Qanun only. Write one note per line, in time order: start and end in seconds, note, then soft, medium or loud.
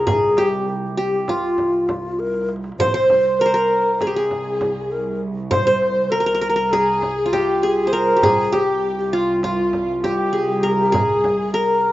0.00 0.91 A#4 medium
0.07 0.44 G#4 medium
0.38 0.97 G4 medium
0.97 2.23 G4 medium
1.29 2.64 F4 medium
2.80 2.94 C5 loud
2.94 3.45 C5 medium
3.41 3.53 A#4 medium
3.46 4.51 C5 medium
3.54 4.67 A#4 medium
4.01 4.13 G#4 medium
4.07 4.22 G4 medium
4.16 5.38 G#4 medium
5.51 5.66 C5 loud
5.67 6.72 C5 medium
6.12 6.20 A#4 medium
6.20 6.26 A#4 medium
6.26 6.34 A#4 medium
6.35 6.41 A#4 medium
6.41 6.49 A#4 medium
6.49 6.55 A#4 medium
6.56 7.69 A#4 medium
6.73 7.39 G#4 medium
7.26 8.60 F4 medium
7.33 7.69 G4 medium
7.63 8.23 G#4 medium
7.87 8.93 C5 medium
7.93 9.06 A#4 medium
8.17 8.29 G4 medium
8.23 8.58 G#4 medium
8.52 9.78 G4 medium
9.13 9.44 F4 medium
9.44 10.79 F4 medium
10.04 10.39 G4 medium
10.33 10.92 G#4 medium
10.63 11.53 A#4 medium
10.92 11.92 G#4 medium
11.54 11.92 A#4 medium